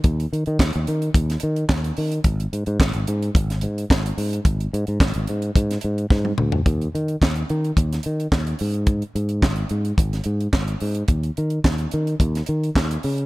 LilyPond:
<<
  \new Staff \with { instrumentName = "Fingered electric bass" } { \clef bass \time 4/4 \key aes \dorian \tempo 4 = 108 ees,8 ees16 ees16 ees,16 ees,16 ees8 ees,8 ees8 ees,8 ees8 | aes,,8 aes,16 aes,16 aes,,16 aes,,16 aes,8 aes,,8 aes,8 aes,,8 aes,8 | aes,,8 aes,16 aes,16 aes,,16 aes,,16 aes,8 aes,8 aes,8 aes,8 d,8 | ees,8 ees8 ees,8 ees8 ees,8 ees8 ees,8 aes,8~ |
aes,8 aes,8 aes,,8 aes,8 aes,,8 aes,8 aes,,8 aes,8 | ees,8 ees8 ees,8 ees8 ees,8 ees8 ees,8 des8 | }
  \new DrumStaff \with { instrumentName = "Drums" } \drummode { \time 4/4 <hh bd>16 hh16 hh16 hh16 <hc bd sn>16 hh16 hh16 hh16 <hh bd>16 <hh sn>16 hh16 hh16 <hc bd sn>16 hh16 hho16 hh16 | <hh bd>16 hh16 hh16 hh16 <hc bd sn>16 hh16 hh16 hh16 <hh bd>16 <hh sn>16 hh16 hh16 <hc bd sn>16 hh16 hho16 hh16 | <hh bd>16 hh16 hh16 hh16 <hc bd sn>16 hh16 hh16 hh16 <hh bd>16 <hh sn>16 hh16 hh16 <bd sn>16 tommh16 toml16 tomfh16 | <hh bd>16 hh16 hh16 hh16 <hc bd sn>16 hh16 hh16 hh16 <hh bd>16 <hh sn>16 hh16 hh16 <hc bd sn>16 hh16 hho16 hh16 |
<hh bd>16 hh16 hh16 hh16 <hc bd sn>16 hh16 hh16 hh16 <hh bd>16 <hh sn>16 hh16 hh16 <hc bd sn>16 hh16 hho16 hh16 | <hh bd>16 hh16 hh16 hh16 <hc bd sn>16 hh16 hh16 hh16 <hh bd>16 <hh sn>16 hh16 hh16 <hc bd sn>16 hh16 hho16 hh16 | }
>>